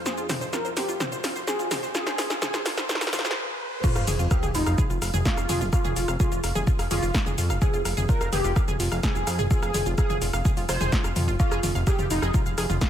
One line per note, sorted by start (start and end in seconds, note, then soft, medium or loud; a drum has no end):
0.00 3.37 F2 medium
0.00 3.37 F3 medium
0.00 riser medium
0.06 0.24 G#4 loud
0.06 0.14 C5 medium
0.06 snare medium
0.06 shaker medium
0.18 0.26 F1 medium
0.18 0.26 F4 medium
0.18 shaker soft
0.29 0.38 C5 medium
0.29 snare medium
0.29 open hi-hat loud
0.29 mid tom medium
0.29 shaker medium
0.41 0.50 F1 medium
0.41 0.49 C5 medium
0.41 shaker soft
0.53 0.61 F4 medium
0.53 0.72 A#4 medium
0.53 snare medium
0.53 shaker medium
0.65 0.73 F1 medium
0.65 0.73 C5 medium
0.65 shaker soft
0.77 0.85 F1 loud
0.77 1.05 G4 loud
0.77 0.85 C5 medium
0.77 snare medium
0.77 open hi-hat loud
0.77 shaker medium
0.88 0.97 F1 medium
0.88 0.97 F4 medium
0.88 shaker soft
1.00 1.08 C5 medium
1.00 snare medium
1.00 mid tom medium
1.00 shaker medium
1.12 1.21 F1 medium
1.12 1.20 C5 medium
1.12 shaker soft
1.24 1.32 F1 loud
1.24 1.32 F4 medium
1.24 snare medium
1.24 open hi-hat loud
1.24 shaker medium
1.36 1.44 F1 medium
1.36 1.44 C5 medium
1.36 shaker soft
1.47 1.85 G#4 loud
1.47 1.56 C5 medium
1.47 snare medium
1.47 shaker medium
1.59 1.68 F1 medium
1.59 1.67 F4 medium
1.59 shaker soft
1.71 1.84 F2 loud
1.71 1.79 C5 medium
1.71 snare medium
1.71 open hi-hat loud
1.71 mid tom medium
1.71 shaker medium
1.83 1.91 F1 medium
1.83 1.91 C5 medium
1.83 shaker soft
1.95 2.03 F4 medium
1.95 2.32 G#4 loud
1.95 snare medium
1.95 shaker medium
2.07 2.15 F1 medium
2.07 2.15 C5 medium
2.07 snare medium
2.07 shaker soft
2.18 2.26 C5 medium
2.18 snare loud
2.18 open hi-hat loud
2.18 shaker medium
2.30 2.39 F1 medium
2.30 2.38 F4 medium
2.30 snare medium
2.30 shaker soft
2.42 2.61 G#4 medium
2.42 2.50 C5 medium
2.42 snare loud
2.42 mid tom medium
2.42 shaker medium
2.54 2.62 C5 medium
2.54 snare medium
2.54 shaker soft
2.66 2.74 F1 loud
2.66 2.74 F4 medium
2.66 snare loud
2.66 open hi-hat loud
2.66 shaker medium
2.77 2.86 C5 medium
2.77 snare medium
2.77 shaker soft
2.89 2.97 C5 medium
2.89 snare loud
2.89 shaker medium
2.95 snare medium
3.01 3.09 F4 medium
3.01 snare medium
3.01 open hi-hat medium
3.01 shaker soft
3.07 snare medium
3.13 3.21 F4 medium
3.13 3.37 C5 loud
3.13 snare loud
3.13 open hi-hat loud
3.13 mid tom loud
3.13 shaker medium
3.19 snare loud
3.25 3.33 G#4 loud
3.25 snare medium
3.25 shaker soft
3.31 snare medium
3.84 3.92 F4 medium
3.84 4.02 F4 loud
3.84 kick loud
3.84 crash loud
3.84 sub drop medium
3.84 shaker medium
3.96 4.04 F1 medium
3.96 4.04 F5 medium
3.96 cross-stick medium
3.96 shaker soft
4.07 4.16 F1 loud
4.07 4.16 G#4 loud
4.07 open hi-hat loud
4.07 mid tom medium
4.07 shaker medium
4.19 4.28 F1 medium
4.19 4.27 F4 medium
4.19 shaker soft
4.31 4.50 G4 medium
4.31 4.39 F5 medium
4.31 kick loud
4.31 cross-stick medium
4.31 shaker medium
4.43 4.51 F1 medium
4.43 4.51 G#4 loud
4.43 mid tom medium
4.43 shaker soft
4.55 4.63 F1 loud
4.55 4.83 D#4 loud
4.55 4.63 F4 medium
4.55 open hi-hat loud
4.55 shaker medium
4.66 4.75 F1 loud
4.66 4.75 F5 medium
4.66 cross-stick medium
4.66 shaker soft
4.78 4.86 G#4 loud
4.78 kick loud
4.78 mid tom medium
4.78 shaker medium
4.90 4.99 F1 medium
4.90 4.98 F4 medium
4.90 shaker soft
5.02 5.10 F1 loud
5.02 5.10 F5 medium
5.02 cross-stick soft
5.02 open hi-hat loud
5.02 shaker medium
5.14 5.22 F1 medium
5.14 5.22 G#4 loud
5.14 mid tom medium
5.14 shaker soft
5.25 5.34 F4 medium
5.25 5.63 F4 loud
5.25 kick loud
5.25 snare loud
5.25 shaker medium
5.37 5.46 F1 medium
5.37 5.45 F5 medium
5.37 cross-stick medium
5.37 shaker soft
5.49 5.62 F2 loud
5.49 5.57 G#4 loud
5.49 open hi-hat loud
5.49 mid tom medium
5.49 shaker medium
5.61 5.70 F1 medium
5.61 5.69 F4 medium
5.61 shaker soft
5.73 6.10 F4 loud
5.73 5.81 F5 medium
5.73 kick loud
5.73 cross-stick medium
5.73 shaker medium
5.85 5.93 F1 medium
5.85 5.93 G#4 loud
5.85 mid tom medium
5.85 shaker soft
5.96 6.05 F1 loud
5.96 6.05 F4 medium
5.96 open hi-hat loud
5.96 shaker medium
6.08 6.17 F1 medium
6.08 6.16 F5 medium
6.08 cross-stick medium
6.08 shaker soft
6.20 6.39 F4 medium
6.20 6.28 G#4 loud
6.20 kick loud
6.20 mid tom medium
6.20 shaker medium
6.32 6.40 F1 medium
6.32 6.40 F4 medium
6.32 shaker soft
6.43 6.52 F1 loud
6.43 6.52 F5 medium
6.43 cross-stick medium
6.43 open hi-hat loud
6.43 shaker medium
6.55 6.64 F1 medium
6.55 6.64 G#4 loud
6.55 mid tom medium
6.55 shaker soft
6.67 6.75 F4 medium
6.67 kick loud
6.67 shaker medium
6.79 6.88 F1 medium
6.79 6.87 F5 medium
6.79 cross-stick medium
6.79 open hi-hat medium
6.79 shaker soft
6.91 6.99 F1 loud
6.91 7.19 F4 loud
6.91 7.19 F4 medium
6.91 6.99 G#4 loud
6.91 open hi-hat loud
6.91 mid tom medium
6.91 shaker medium
7.03 7.11 F1 medium
7.03 7.11 F4 medium
7.03 shaker soft
7.14 7.23 F5 medium
7.14 kick loud
7.14 cross-stick medium
7.14 snare loud
7.14 shaker medium
7.26 7.35 F1 medium
7.26 7.34 G#4 loud
7.26 mid tom medium
7.26 shaker soft
7.38 7.51 F2 loud
7.38 7.46 F4 medium
7.38 open hi-hat loud
7.38 shaker medium
7.50 7.58 F1 medium
7.50 7.58 F5 medium
7.50 cross-stick medium
7.50 shaker soft
7.62 7.70 G#4 loud
7.62 7.80 G#4 loud
7.62 kick loud
7.62 mid tom medium
7.62 shaker medium
7.74 7.82 F1 medium
7.74 7.82 F4 medium
7.74 shaker soft
7.85 7.94 F1 loud
7.85 7.93 F5 medium
7.85 cross-stick medium
7.85 open hi-hat loud
7.85 shaker medium
7.97 8.06 F1 medium
7.97 8.05 G#4 loud
7.97 mid tom medium
7.97 shaker soft
8.09 8.17 F4 medium
8.09 8.28 A#4 medium
8.09 kick loud
8.09 shaker medium
8.21 8.29 F1 medium
8.21 8.29 F5 medium
8.21 cross-stick medium
8.21 shaker soft
8.33 8.41 F1 loud
8.33 8.60 G4 loud
8.33 8.61 G4 loud
8.33 8.41 G#4 loud
8.33 open hi-hat loud
8.33 mid tom medium
8.33 shaker medium
8.44 8.53 F1 medium
8.44 8.53 F4 medium
8.44 shaker soft
8.56 8.64 F5 medium
8.56 kick loud
8.56 cross-stick medium
8.56 shaker medium
8.68 8.77 F1 medium
8.68 8.76 G#4 loud
8.68 mid tom medium
8.68 shaker soft
8.80 8.88 F1 loud
8.80 8.88 F4 medium
8.80 open hi-hat loud
8.80 shaker medium
8.92 9.00 F1 medium
8.92 9.00 F5 medium
8.92 cross-stick medium
8.92 shaker soft
9.03 9.12 G#4 loud
9.03 9.41 G#4 medium
9.03 9.41 G#4 loud
9.03 kick loud
9.03 snare loud
9.03 mid tom medium
9.03 shaker medium
9.15 9.24 F1 medium
9.15 9.23 F4 medium
9.15 shaker soft
9.27 9.40 F2 loud
9.27 9.35 F5 medium
9.27 cross-stick medium
9.27 open hi-hat loud
9.27 shaker medium
9.39 9.47 F1 medium
9.39 9.47 G#4 loud
9.39 mid tom medium
9.39 shaker soft
9.51 9.59 F4 medium
9.51 9.88 G#4 loud
9.51 9.88 G#4 medium
9.51 kick loud
9.51 shaker medium
9.63 9.71 F1 medium
9.63 9.71 F5 medium
9.63 cross-stick medium
9.63 shaker soft
9.74 9.83 F1 loud
9.74 9.82 G#4 loud
9.74 open hi-hat loud
9.74 mid tom medium
9.74 shaker medium
9.86 9.95 F1 medium
9.86 9.94 F4 medium
9.86 shaker soft
9.98 10.17 G#4 medium
9.98 10.06 F5 medium
9.98 kick loud
9.98 cross-stick medium
9.98 shaker medium
10.10 10.18 F1 medium
10.10 10.18 G#4 loud
10.10 mid tom medium
10.10 shaker soft
10.22 10.30 F1 loud
10.22 10.30 F4 medium
10.22 open hi-hat loud
10.22 shaker medium
10.33 10.42 F1 medium
10.33 10.42 F5 medium
10.33 cross-stick medium
10.33 shaker soft
10.45 10.53 G#4 loud
10.45 kick loud
10.45 mid tom medium
10.45 shaker medium
10.57 10.66 F1 medium
10.57 10.65 F4 medium
10.57 open hi-hat medium
10.57 shaker soft
10.69 10.77 F1 loud
10.69 10.77 F4 medium
10.69 10.97 C5 medium
10.69 10.97 C5 loud
10.69 cross-stick medium
10.69 open hi-hat loud
10.69 shaker medium
10.81 10.89 F1 medium
10.81 10.89 G#4 loud
10.81 mid tom medium
10.81 shaker soft
10.92 11.04 F4 medium
10.92 kick loud
10.92 snare loud
10.92 shaker medium
11.04 11.13 F1 medium
11.04 11.12 F5 medium
11.04 cross-stick medium
11.04 shaker soft
11.16 11.29 F2 loud
11.16 11.24 F4 medium
11.16 open hi-hat loud
11.16 mid tom loud
11.16 shaker medium
11.28 11.36 F1 medium
11.28 11.36 F4 medium
11.28 shaker soft
11.40 11.58 F4 loud
11.40 11.48 F5 medium
11.40 kick loud
11.40 shaker medium
11.52 11.60 F1 medium
11.52 11.60 G#4 loud
11.52 cross-stick medium
11.52 shaker soft
11.63 11.72 F1 loud
11.63 11.71 F4 medium
11.63 open hi-hat loud
11.63 mid tom loud
11.63 shaker medium
11.75 11.84 F1 medium
11.75 11.83 F5 medium
11.75 shaker soft
11.87 12.05 G4 medium
11.87 12.06 G4 medium
11.87 11.95 G#4 loud
11.87 kick loud
11.87 cross-stick medium
11.87 shaker medium
11.99 12.07 F1 medium
11.99 12.07 F4 medium
11.99 mid tom loud
11.99 shaker soft
12.10 12.19 F1 loud
12.10 12.38 D#4 loud
12.10 12.19 F5 medium
12.10 open hi-hat loud
12.10 shaker medium
12.22 12.31 F1 loud
12.22 12.30 G#4 loud
12.22 cross-stick medium
12.22 shaker soft
12.34 12.42 F4 medium
12.34 kick loud
12.34 mid tom loud
12.34 shaker medium
12.46 12.55 F1 medium
12.46 12.54 F5 medium
12.46 shaker soft
12.58 12.66 F1 loud
12.58 12.66 G#4 loud
12.58 cross-stick medium
12.58 open hi-hat loud
12.58 shaker medium
12.70 12.78 F1 medium
12.70 12.78 F4 medium
12.70 mid tom loud
12.70 shaker soft
12.81 12.90 F4 loud
12.81 12.90 F4 medium
12.81 12.90 F5 medium
12.81 kick loud
12.81 snare loud
12.81 shaker medium